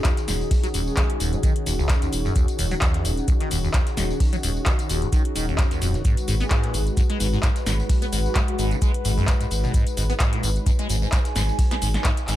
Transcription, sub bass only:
0.28 D#1
0.74 D#1
1.20 D#1
1.66 D#1
2.13 D#1
2.59 D#1
3.05 D#1
3.51 D#1
3.97 D#1
4.43 D#1
4.89 D#1
5.36 D#1
5.82 D#1
6.28 G#1
6.74 G#1
7.20 G#1
7.66 G#1
8.12 G#1
8.59 G#1
9.05 G#1
9.51 G#1
9.97 G#1
10.43 G#1
10.89 G#1
11.36 G#1
11.82 G#1
12.28 G#1

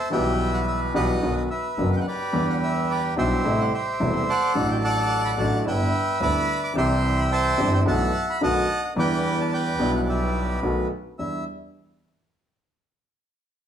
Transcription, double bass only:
0.12 B1
0.95 B1
1.23 B1
1.78 F#1
2.34 E2
3.18 B1
3.45 A1
4.01 E1
4.56 A1
5.39 A1
5.67 G1
6.21 D2
6.77 C2
7.59 G1
7.87 B1
8.42 B1
8.96 E2
9.79 B1
10.63 B1
11.19 E2

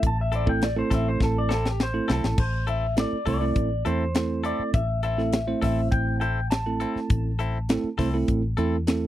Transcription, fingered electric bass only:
0.03 A1
0.91 A1
1.20 A1
2.09 B1
2.24 A1
2.38 A1
3.13 muted fingered electric bass stroke
3.26 C2
3.56 A1
3.86 E2
4.59 muted fingered electric bass stroke
4.74 A1
5.62 A1
5.92 A1
6.96 muted fingered electric bass stroke
7.10 A1
7.84 muted fingered electric bass stroke
7.99 C2
8.28 A1
8.58 E2

